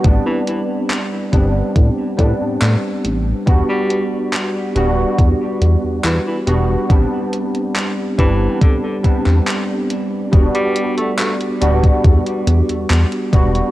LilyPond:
<<
  \new Staff \with { instrumentName = "Tine electric piano" } { \time 4/4 \key a \dorian \tempo 4 = 70 <g b c' d'>4. <g b c' d'>4 <g b c' d'>4. | <g b d' fis'>4. <g b d' fis'>8 r4. <g b d' fis'>8 | <g b c' d'>4. <g b c' d'>4 <g b c' d'>4. | <g b d' fis'>4. <g b d' fis'>8 r4. <g b d' fis'>8 | }
  \new Staff \with { instrumentName = "Tenor saxophone" } { \clef bass \time 4/4 \key a \dorian r16 e16 e16 r2. r16 | r16 g8 r2 r16 e16 e16 r8 | r4. e8 d16 d16 r4. | r16 g8 a16 a16 r2 r8. | }
  \new Staff \with { instrumentName = "Analog synth bass" } { \clef bass \time 4/4 \key a \dorian a,,16 r4 r16 g,,16 r16 a,16 r16 a,16 a,16 a,16 r16 a,,16 r16 | e,,16 r4 r16 d,,16 r16 e,16 r16 e,16 e,16 e,16 r16 e,,16 r16 | a,,16 r4 r16 g,,16 r4 e,16 r4 | e,,16 r4 r16 d,,16 r16 e,16 r16 e,16 e,16 e,16 r16 e,,16 r16 | }
  \new DrumStaff \with { instrumentName = "Drums" } \drummode { \time 4/4 <hh bd>8 hh8 <hc hh>8 <hh bd>8 <hh bd>8 <hh bd>8 <hc hh>8 hh8 | <hh bd>8 hh8 <hc hh>8 hh8 <hh bd>8 hh8 <hc hh>8 hh8 | <hh bd>8 hh16 hh16 <hc hh>8 <hh bd>8 <hh bd>8 <hh bd>16 hc16 <hc hh>8 hh8 | <hh bd>16 hh16 hh16 hh16 <hc hh>16 hh16 hh16 <hh bd>16 <hh bd>16 hh16 hh16 hh16 <hc hh>16 hh16 <hh bd>16 hh16 | }
>>